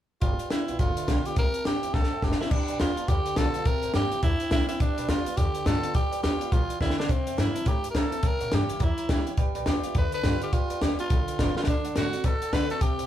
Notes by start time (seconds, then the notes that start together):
0.21 G1 G3 F4 B4 D5 G5, kick, closed hi-hat
0.39 B4 D5 G5, muted upright bass stroke, closed hi-hat
0.50 D2 G3 B3 E4 F4 B4 D5 G5, snare, closed hi-hat
0.67 B1 B3 F4 B4 D5 G5, closed hi-hat
0.79 G1 D3 F4 B4 D5 F5, kick, closed hi-hat
0.97 B4 D5 E5, muted upright bass stroke, closed hi-hat
1.07 B1 G3 B3 F4 B4 D5 G5, kick, snare, closed hi-hat
1.25 B3 F4 G4 B4 D5 G5, muted upright bass stroke, closed hi-hat
1.36 C2 C3 A#4 C5 E5 G5, kick, closed hi-hat
1.54 C5 E5 A5, closed hi-hat
1.64 G2 E3 A#3 C4 E4 G4 C5 E5 G5, snare, closed hi-hat
1.82 E2 C4 E4 C5 E5 G5, closed hi-hat
1.93 C2 G2 A4 C5 E5, kick, snare
2.03 snare
2.11 C5 E5 G5, muted upright bass stroke
2.22 F#1 E3 A#3 C4 E4 G4 C5 E5 A5, kick, snare
2.32 snare
2.39 C4 E4 C5 E5, muted upright bass stroke, snare
2.51 G1 G3 D4 B4 D5 G5, kick, crash
2.68 B1 B4 D5 G5, closed hi-hat
2.79 D2 G3 B3 F4, snare, closed hi-hat
2.97 B3 F4 B4 D5 A5, muted upright bass stroke, closed hi-hat
3.08 E2 D3 G4 B4 D5 G5, kick, closed hi-hat
3.26 B4 D5 G5, muted upright bass stroke, closed hi-hat
3.36 B1 G3 B3 F4 A4 B4 D5 F5, kick, snare, closed hi-hat
3.54 B3 F4 B4 D5 F5, muted upright bass stroke, closed hi-hat
3.65 C2 C3 A#4 C5 G5, kick, closed hi-hat
3.83 A2 C5 E5 G5, closed hi-hat
3.93 G2 E3 A#3 C4 E4 G4 C5 E5, snare, closed hi-hat
4.11 C4 E4 C5 E5 G5, muted upright bass stroke, closed hi-hat
4.22 E2 G2 E4 C5 E5 A5, kick, closed hi-hat
4.40 C5 G5, muted upright bass stroke, closed hi-hat
4.50 C2 E3 A#3 C4 E4 C5 E5 G5, kick, snare, closed hi-hat
4.69 C4 E4 C5 E5 G5, snare, closed hi-hat
4.80 G1 G3 D4 B4 D5 G5, kick, closed hi-hat
4.97 B1 B4 D5 G5, closed hi-hat
5.08 D2 G3 B3 F4 B4 D5, snare, closed hi-hat
5.26 B3 F4 B4 D5 F5, muted upright bass stroke, closed hi-hat
5.37 E2 D3 G4 B4 G5, kick, closed hi-hat
5.55 B4 D5 G5, muted upright bass stroke, closed hi-hat
5.65 G2 G3 B3 F4 A4 B4 D5 G5, kick, snare, closed hi-hat
5.83 B3 F4 B4 D5, muted upright bass stroke, closed hi-hat
5.94 G2 G3 G4 B4 D5 G5, kick, closed hi-hat
6.11 E2 B4 D5 G5, closed hi-hat
6.23 D2 G3 B3 F4 G4 B4, snare, closed hi-hat
6.40 B3 F4 B4 D5 G5, muted upright bass stroke, closed hi-hat
6.52 B1 E3 F4 B4 D5 G5, kick, closed hi-hat
6.69 B4 D5 G5, muted upright bass stroke, closed hi-hat
6.80 D2 D3 E4 B4 D5 G5, kick, snare
6.90 snare
6.98 D4 B4 D5, muted upright bass stroke, snare
7.09 C2 C3 C4 C5 E5 G5, kick, closed hi-hat
7.27 E2 C5 E5 G5, closed hi-hat
7.37 G2 E3 A#3 C4 E4 C5 E5 A#5, snare, closed hi-hat
7.54 C4 E4 C5 E5 A5, muted upright bass stroke, closed hi-hat
7.65 G2 A2 G4 C5 E5 A#5, kick, closed hi-hat
7.83 C5 E5 G5, muted upright bass stroke, closed hi-hat
7.91 E3 A#3 A#4 C5 E5 A#5
7.95 C3 C4 E4 A4, kick, snare, closed hi-hat
8.11 C4 E4 C5 E5 A5, muted upright bass stroke, closed hi-hat
8.23 C#2 C#3 C#5 E5 G5, kick, closed hi-hat
8.27 A#4
8.40 A#2 C#5 E5 F#5, closed hi-hat
8.51 G2 E3 A#3 C#4 G4 G5, snare, closed hi-hat
8.69 C#5 E5 G5, muted upright bass stroke, closed hi-hat
8.79 E2 E3 C#5 E5 A#5, kick, closed hi-hat
8.83 E4
8.97 C#5 E5 A#5, muted upright bass stroke, closed hi-hat
9.08 C#2 E3 A#3 C#4 G4 C#5 E5 G5, kick, snare, closed hi-hat
9.13 E4
9.26 C#4 G4 C#5 F#5, closed hi-hat
9.37 G1 G3 B4 D5 G5, kick, closed hi-hat
9.55 B1 B4 D5 G5, closed hi-hat
9.66 D2 G3 B3 F4 G4 G5, snare, closed hi-hat
9.83 B3 F4 B4 D5 E5, muted upright bass stroke, closed hi-hat
9.95 E2 D3 B4 D5 E5, kick, closed hi-hat
10.12 B4 D5 A5, muted upright bass stroke, closed hi-hat
10.24 G2 G3 B3 F4 B4 D5 G5, kick, snare, closed hi-hat
10.41 G4 B4 D5 G5, muted upright bass stroke, closed hi-hat
10.53 G2 G3 F4 B4 D5 G5, kick, closed hi-hat
10.70 E2 B4 D5 G5, closed hi-hat
10.81 D2 G3 B3 F4 G4 B4, snare, closed hi-hat
10.98 B3 F4 B4 D5 A5, muted upright bass stroke, closed hi-hat
11.10 B1 D3 G5, kick, closed hi-hat
11.27 B4 D5 G5, muted upright bass stroke, closed hi-hat
11.39 G1 G3 B3 F4 B4 D5 F5, kick, snare, closed hi-hat
11.56 F4 B4 D5, muted upright bass stroke, snare
11.64 D2 A4, kick, snare, closed hi-hat
11.68 D3 D4 D5 F#5
11.84 F#2 A4 D5 F#5, closed hi-hat
11.96 A2 D3 A3 C4 F#4 F#5, snare, closed hi-hat
12.12 C4 F#4 A4 D5 F#5, muted upright bass stroke, closed hi-hat
12.24 A2 B2 A4 D5 F#5, kick, closed hi-hat
12.41 A4 D5 F#5, muted upright bass stroke, closed hi-hat
12.52 D3 A3 C4 F#4 A4 B4 D5 F#5, kick, snare, closed hi-hat
12.70 C4 F#4 A4 D5 F#5, muted upright bass stroke, closed hi-hat
12.81 C2 C3 G4 C5 E5 G5, kick, closed hi-hat
12.98 A2 C5 E5 G5, closed hi-hat